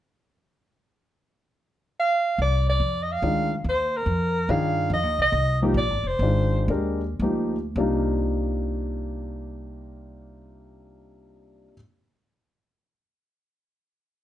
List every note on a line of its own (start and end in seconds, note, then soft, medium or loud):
2.00 2.38 F5 medium
2.38 2.79 C2 medium
2.38 2.67 D5 medium
2.69 3.05 D5 medium
2.80 3.21 F2 medium
3.03 3.13 D#5 medium
3.12 3.53 F5 medium
3.22 3.64 D2 medium
3.22 3.48 D#3 medium
3.22 3.49 G#3 soft
3.22 3.49 D4 soft
3.22 3.49 F4 medium
3.64 4.05 D#2 medium
3.69 3.98 C5 medium
3.97 4.53 A#4 medium
4.06 4.47 F2 medium
4.49 4.89 G2 medium
4.49 4.91 D#3 medium
4.49 4.92 D4 medium
4.49 4.92 F4 medium
4.49 4.92 G#4 medium
4.49 4.92 F5 medium
4.90 5.03 F2 medium
4.90 5.19 D#5 medium
5.03 5.18 D#2 soft
5.18 5.32 C2 medium
5.18 5.61 D#5 medium
5.32 5.74 C2 medium
5.62 5.75 F3 medium
5.62 5.76 A#3 medium
5.62 5.76 D#4 medium
5.62 5.76 G4 medium
5.74 5.90 A#1 medium
5.74 6.08 D5 medium
5.90 6.03 G#1 soft
6.04 6.18 F1 medium
6.04 6.70 C5 medium
6.19 6.67 G#1 medium
6.19 6.68 D#3 medium
6.19 6.68 G#3 soft
6.19 6.68 D4 soft
6.19 6.69 F4 medium
6.68 7.19 D#2 medium
6.68 7.00 G#3 medium
6.68 7.00 D4 soft
6.68 7.00 G4 medium
6.68 7.01 A#4 medium
7.19 7.75 D2 medium
7.19 7.55 F3 medium
7.19 7.55 A#3 medium
7.19 7.55 D#4 medium
7.19 7.55 G4 medium
7.76 11.67 C2 medium
7.76 11.72 C3 medium
7.76 11.73 G3 medium
7.76 11.73 A#3 medium
7.76 11.74 D4 medium
7.76 11.75 D#4 medium
7.80 11.75 F4 medium